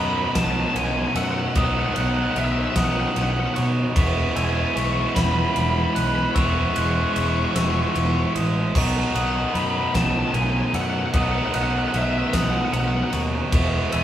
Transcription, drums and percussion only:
0.35 kick medium
0.35 snare loud
0.35 ride loud
0.76 ride loud
1.16 ride medium
1.55 kick loud
1.55 ride loud
1.96 ride medium
2.36 ride medium
2.76 kick medium
2.76 snare loud
2.76 ride loud
3.16 ride medium
3.56 ride medium
3.96 kick loud
3.96 ride loud
4.36 ride medium
4.77 ride medium
5.16 kick medium
5.16 snare loud
5.16 ride loud
5.56 ride medium
5.96 ride medium
6.36 kick loud
6.36 ride loud
6.76 ride medium
7.16 ride medium
7.56 snare loud
7.56 ride loud
7.95 ride medium
8.36 ride medium
8.75 kick loud
8.75 crash loud
9.15 ride medium
9.55 ride medium
9.95 kick medium
9.95 snare loud
9.95 ride loud
10.34 ride medium
10.74 ride medium
11.14 kick loud
11.14 ride loud
11.54 ride medium
11.94 ride medium
12.33 kick medium
12.33 snare loud
12.33 ride loud
12.73 ride medium
13.13 ride medium
13.52 kick loud
13.52 ride loud
13.92 ride medium

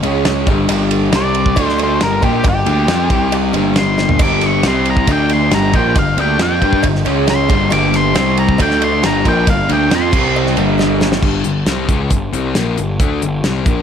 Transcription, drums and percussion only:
0.03 ride medium
0.03 cowbell medium
0.25 snare loud
0.25 ride loud
0.25 cowbell medium
0.47 kick loud
0.47 ride medium
0.47 cowbell medium
0.69 ride loud
0.69 cowbell loud
0.91 ride medium
1.12 snare loud
1.12 ride loud
1.12 cowbell medium
1.35 ride medium
1.46 kick medium
1.56 kick loud
1.56 ride loud
1.56 cowbell loud
1.69 snare soft
1.78 ride medium
1.78 cowbell medium
2.01 snare loud
2.01 ride loud
2.01 cowbell medium
2.22 kick medium
2.22 ride medium
2.22 cowbell medium
2.44 kick loud
2.44 ride medium
2.44 cowbell loud
2.66 ride medium
2.88 snare loud
2.88 ride loud
2.88 cowbell medium
3.10 kick loud
3.10 ride medium
3.32 ride loud
3.32 cowbell medium
3.53 ride medium
3.53 cowbell medium
3.76 snare loud
3.76 ride loud
3.76 cowbell medium
3.98 snare medium
3.98 cowbell medium
4.09 floor tom medium
4.19 kick loud
4.19 cowbell medium
4.19 crash loud
4.41 snare soft
4.41 ride medium
4.63 snare loud
4.63 ride loud
4.63 cowbell medium
4.86 ride medium
4.97 kick medium
5.07 kick loud
5.07 ride loud
5.07 cowbell medium
5.29 ride medium
5.29 cowbell medium
5.51 snare loud
5.51 ride loud
5.51 cowbell medium
5.73 kick medium
5.73 ride medium
5.73 cowbell medium
5.96 kick loud
5.96 ride loud
5.96 cowbell medium
6.18 ride medium
6.39 snare loud
6.39 ride loud
6.39 cowbell medium
6.62 kick medium
6.62 ride medium
6.73 kick medium
6.83 kick loud
6.83 ride loud
6.83 cowbell medium
6.95 snare soft
7.05 ride medium
7.05 cowbell medium
7.27 snare loud
7.27 ride loud
7.27 cowbell medium
7.49 kick loud
7.49 ride medium
7.49 cowbell medium
7.70 ride loud
7.70 cowbell medium
7.94 snare soft
7.94 ride medium
8.15 snare loud
8.15 ride loud
8.15 cowbell medium
8.37 ride medium
8.49 kick medium
8.58 kick loud
8.58 ride loud
8.58 cowbell medium
8.71 snare soft
8.82 ride medium
8.82 cowbell medium
9.03 snare loud
9.03 ride loud
9.03 cowbell medium
9.25 kick medium
9.25 ride medium
9.25 cowbell medium
9.47 kick loud
9.47 ride loud
9.47 cowbell medium
9.69 ride medium
9.91 snare loud
9.91 ride loud
9.91 cowbell medium
10.13 kick loud
10.13 crash loud
10.36 cowbell medium
10.46 snare soft
10.57 ride medium
10.57 cowbell medium
10.79 snare medium
10.79 cowbell medium
11.01 snare medium
11.01 cowbell medium
11.12 snare loud
11.23 kick medium
11.23 crash medium
11.44 closed hi-hat medium
11.66 snare loud
11.66 closed hi-hat medium
11.89 kick medium
11.89 closed hi-hat medium
12.10 kick medium
12.10 closed hi-hat medium
12.33 closed hi-hat medium
12.55 snare loud
12.55 closed hi-hat medium
12.77 closed hi-hat medium
13.00 kick loud
13.00 closed hi-hat medium
13.22 closed hi-hat medium
13.44 snare loud
13.44 closed hi-hat medium
13.66 kick loud
13.66 closed hi-hat medium

